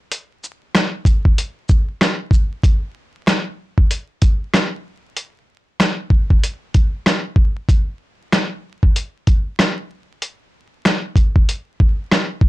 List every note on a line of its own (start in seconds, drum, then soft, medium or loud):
0.12 closed hi-hat medium
0.44 shaker medium
0.75 cross-stick medium
0.75 snare loud
0.75 closed hi-hat medium
1.05 kick loud
1.05 closed hi-hat medium
1.05 shaker medium
1.25 kick medium
1.38 closed hi-hat loud
1.69 kick medium
1.69 shaker medium
2.01 cross-stick medium
2.01 snare loud
2.01 closed hi-hat medium
2.31 kick loud
2.31 shaker medium
2.63 kick loud
2.63 closed hi-hat medium
3.27 cross-stick medium
3.27 snare loud
3.27 closed hi-hat medium
3.78 kick medium
3.91 closed hi-hat loud
4.22 kick medium
4.22 closed hi-hat medium
4.54 cross-stick medium
4.54 snare loud
4.54 closed hi-hat medium
5.17 closed hi-hat medium
5.80 cross-stick medium
5.80 snare loud
5.80 closed hi-hat medium
6.10 kick medium
6.30 kick medium
6.43 closed hi-hat loud
6.74 kick medium
6.74 closed hi-hat medium
7.06 cross-stick medium
7.06 snare loud
7.06 closed hi-hat medium
7.36 kick loud
7.69 kick loud
7.69 closed hi-hat medium
8.32 cross-stick medium
8.32 snare loud
8.32 closed hi-hat medium
8.83 kick medium
8.96 closed hi-hat loud
9.27 kick medium
9.27 closed hi-hat medium
9.59 cross-stick medium
9.59 snare loud
9.59 closed hi-hat medium
10.22 closed hi-hat medium
10.85 cross-stick medium
10.85 snare loud
10.85 closed hi-hat medium
11.16 kick medium
11.16 closed hi-hat soft
11.36 kick medium
11.49 closed hi-hat loud
11.80 kick medium
12.11 cross-stick medium
12.11 snare loud
12.11 closed hi-hat medium
12.41 kick loud